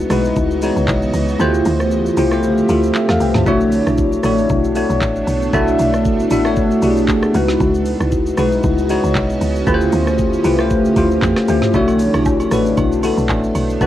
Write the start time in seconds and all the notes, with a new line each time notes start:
Already playing: C#3 E3 G#3 B3 D#4 E4 F#4 B4 D#5
0.10 B1 G#3 D#4 E4 F#4 B4, cross-stick, open hi-hat, shaker
0.25 shaker
0.36 C#2, kick, shaker
0.51 shaker
0.62 G#3 D#4 E4 F#4 C#5, open hi-hat, shaker
0.76 C#2, shaker
0.88 B1, kick, clap, shaker
1.02 shaker
1.14 C#2, open hi-hat, shaker
1.29 shaker
1.40 D2 D3 F3 A3 C4 E4 F4 G4 C5 E5, shaker
1.54 shaker
1.65 D2, open hi-hat, shaker
1.80 cross-stick, shaker
1.91 shaker
2.06 shaker
2.17 C2 A3 E4 F4 G4 C5, open hi-hat, shaker
2.32 A3 E4 F4 G4 C5, cross-stick, shaker
2.43 shaker
2.58 shaker
2.69 D2 A3 E4 F4 G4 A4, open hi-hat, shaker
2.84 shaker
2.95 G4 E5, clap, shaker
3.09 E2 A4 F5, cross-stick, snare, shaker
3.20 C2 B4 G5, open hi-hat, shaker
3.35 D2 C5 A5, snare, mid tom, shaker
3.47 B1 A3 B3 D4 E4 F#4 C#5, kick, shaker
3.61 shaker
3.72 open hi-hat, shaker
3.87 B1, cross-stick, shaker
3.98 kick, shaker
4.13 shaker
4.23 A1 A3 D4 E4 F#4 C#5, cross-stick, open hi-hat, shaker
4.38 shaker
4.49 B1, kick, shaker
4.64 shaker
4.76 A3 D4 E4 F#4 C#5, open hi-hat, shaker
4.90 B1, shaker
5.02 A1, kick, clap, shaker
5.16 shaker
5.27 B1, open hi-hat, shaker
5.42 shaker
5.53 B1 A3 D4 E4 F#4 E5, kick, shaker
5.68 shaker
5.79 B1, open hi-hat, shaker
5.94 cross-stick, shaker
6.05 kick, shaker
6.20 shaker
6.31 A1 A3 D4 E4 F#4 E5, open hi-hat, shaker
6.45 A3 D4 E4 F#4 C#5, cross-stick, shaker
6.56 kick, shaker
6.71 shaker
6.82 B1 A3 D4 E4 F#4 G4, open hi-hat, shaker
6.90 G#4
6.97 shaker
7.08 kick, clap, shaker
7.23 cross-stick, shaker
7.34 C#2 C#3 G#3 B3 C#4 D#4 E4 F#4 B4 D#5, open hi-hat, shaker
7.48 snare, shaker
7.60 C#2, kick, shaker
7.74 shaker
7.85 open hi-hat, shaker
8.00 C#2, cross-stick, shaker
8.12 kick, shaker
8.26 shaker
8.37 B1 G#3 D#4 E4 F#4 B4, cross-stick, open hi-hat, shaker
8.52 shaker
8.63 C#2, kick, shaker
8.78 shaker
8.89 G#3 D#4 E4 F#4 C#5, open hi-hat, shaker
9.04 C#2, shaker
9.15 B1, kick, clap, shaker
9.30 shaker
9.41 C#2, open hi-hat, shaker
9.56 shaker
9.67 D2 D3 F3 A3 C4 E4 F4 G4 B4, kick, shaker
9.74 C5
9.81 shaker
9.92 D2, open hi-hat, shaker
10.07 cross-stick, shaker
10.19 kick, shaker
10.33 shaker
10.44 C2 A3 E4 F4 G4 B4, open hi-hat, shaker
10.59 A3 E4 F4 G4 C5, cross-stick, shaker
10.70 kick, shaker
10.85 shaker
10.96 D2 A3 E4 F4 G4 C5, kick, open hi-hat, shaker
11.11 shaker
11.22 E2, kick, clap, shaker
11.36 cross-stick, snare, shaker
11.48 D2 A3 E4 F4 G4 C5, open hi-hat, shaker
11.62 snare, mid tom, shaker
11.74 B1 A3 B3 D4 E4 F#4 C#5, kick, shaker
11.88 high agogo, shaker
11.99 open hi-hat, shaker
12.14 B1, cross-stick, high agogo, shaker
12.26 kick, low woodblock, shaker
12.40 high agogo, shaker
12.51 A1 A3 D4 E4 F#4 B4, cross-stick, open hi-hat, shaker
12.66 shaker
12.77 B1, kick, high agogo, shaker
12.92 shaker
13.03 A3 D4 E4 F#4 A4, open hi-hat, high agogo, shaker
13.17 B1, shaker
13.29 A1, kick, clap, high agogo, low woodblock, shaker
13.44 shaker
13.55 B1, open hi-hat, high agogo, shaker
13.70 shaker
13.81 B1 A3 D4 E4 F#4 B4, kick, shaker